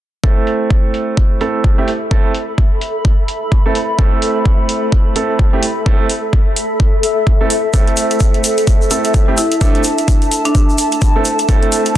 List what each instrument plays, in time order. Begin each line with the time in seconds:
0.24 grand piano A3 C4 E4 A4, ambient pad A4, kick
0.47 open hi-hat
0.55 ambient pad E5
0.70 kick
0.89 ambient pad B5
0.94 open hi-hat
1.17 kick
1.41 grand piano A3 C4 E4 A4, open hi-hat
1.64 kick
1.78 grand piano A3 C4 E4 G4
1.88 open hi-hat
2.11 grand piano A3 C4 E4 A4, kick
2.35 open hi-hat
2.58 kick
2.81 open hi-hat
3.05 kick
3.28 open hi-hat
3.52 kick
3.66 grand piano A3 C4 E4 A4
3.75 open hi-hat
3.99 grand piano A3 C4 E4 A4, kick
4.22 open hi-hat
4.45 kick
4.69 open hi-hat
4.92 kick
5.16 grand piano A3 C4 E4 A4, open hi-hat
5.39 kick
5.53 grand piano A3 C4 E4 G4
5.63 open hi-hat
5.86 grand piano A3 C4 E4 A4, kick
6.09 open hi-hat
6.33 kick
6.56 open hi-hat
6.80 kick
7.03 open hi-hat
7.27 kick
7.41 grand piano A3 C4 E4 A4
7.50 open hi-hat
7.74 grand piano A3 C4 E4 A4, kick, closed hi-hat, shaker
7.88 ambient pad A5, closed hi-hat
7.97 open hi-hat, shaker
8.11 closed hi-hat, shaker
8.20 kick, closed hi-hat, shaker
8.34 closed hi-hat
8.44 open hi-hat, shaker
8.58 closed hi-hat, shaker
8.67 kick, closed hi-hat, shaker
8.82 shaker
8.91 grand piano A3 C4 E4 A4, open hi-hat, shaker
9.04 closed hi-hat, shaker
9.14 kick, closed hi-hat, shaker
9.28 grand piano A3 C4 E4 G4
9.37 marimba E4, open hi-hat, shaker
9.51 closed hi-hat, shaker
9.61 grand piano A3 C4 E4 A4, marimba D4, kick, closed hi-hat, shaker
9.75 closed hi-hat
9.84 open hi-hat, shaker
9.98 closed hi-hat, shaker
10.08 kick, closed hi-hat, shaker
10.22 closed hi-hat, shaker
10.31 open hi-hat, shaker
10.45 marimba D4, closed hi-hat, shaker
10.55 kick, closed hi-hat, shaker
10.69 shaker
10.78 open hi-hat, shaker
10.92 closed hi-hat, shaker
11.02 kick, closed hi-hat, shaker
11.16 grand piano A3 C4 E4 A4
11.25 open hi-hat, shaker
11.39 closed hi-hat, shaker
11.48 grand piano A3 C4 E4 A4, kick, closed hi-hat, shaker
11.63 closed hi-hat
11.72 open hi-hat, shaker
11.86 closed hi-hat, shaker